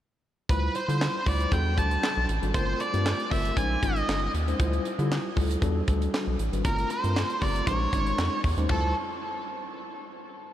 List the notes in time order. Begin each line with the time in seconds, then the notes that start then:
0.49 D2 G3 E4 F4 B4 C5, kick, closed hi-hat
0.75 C5, closed hi-hat
0.88 D3 G3 E4 F4 C5, closed hi-hat
1.01 snare, clap
1.26 D2 G3 E4 F4 C5 D5, kick, open hi-hat
1.40 closed hi-hat
1.51 E2 G3 D4 F#4 A4 G5, kick, closed hi-hat
1.77 D2 G3 D4 F#4 A4 A5, kick, closed hi-hat
1.91 closed hi-hat
2.04 snare, clap
2.17 B1
2.29 A1, closed hi-hat
2.42 G#1 G3 D4 F#4 A4, closed hi-hat
2.54 G1 A3 C4 F4 A#4 C5, kick, closed hi-hat
2.80 D5, closed hi-hat
2.93 G2 A3 C4 F4 G4, closed hi-hat
3.06 snare, clap
3.19 closed hi-hat
3.30 G1 A3 C4 F4 A#4 E5, kick, open hi-hat
3.45 closed hi-hat
3.57 A#1 G#3 C#4 D#4 C5 G#5, kick, closed hi-hat
3.82 G#1 G#3 C#4 D#4 F4 D#5, kick, closed hi-hat
3.96 closed hi-hat
4.08 G1, snare, clap
4.34 D#2, closed hi-hat
4.47 G#3 C#4 D#4 C5, closed hi-hat
4.59 D2 G3 E4 F4 C5, kick, closed hi-hat
4.73 closed hi-hat
4.85 closed hi-hat
4.99 D3 G3 E4 F4 G4, closed hi-hat
5.12 snare, clap
5.36 D2 G3 E4 F4 A4, kick, open hi-hat
5.51 closed hi-hat
5.62 E2 G3 D4 F#4 A4, kick, closed hi-hat
5.87 D2 G3 D4 F#4 A4, kick, closed hi-hat
6.02 closed hi-hat
6.14 snare, clap
6.27 B1
6.39 A1, closed hi-hat
6.53 G#1 G3 D4 F#4 B4, closed hi-hat
6.64 G1 A3 C4 F4 A#4, kick, closed hi-hat
6.78 closed hi-hat
6.90 C5, closed hi-hat
7.03 G2 A3 C4 F4 A#4, closed hi-hat
7.16 snare, clap
7.30 closed hi-hat
7.41 G1 A3 C4 F4 G4 D5, kick, open hi-hat
7.56 closed hi-hat
7.66 A#1 G#3 C#4 D#4 C5 C#5, kick, closed hi-hat
7.92 G#1 G#3 C#4 D#4 C#5, kick, closed hi-hat
8.06 closed hi-hat
8.18 F2, snare, clap
8.44 E2, kick, open hi-hat
8.57 D#2 G#3 C#4 D#4 C5, closed hi-hat
8.69 D2 G3 E4 F4 A4 C5, kick, floor tom, splash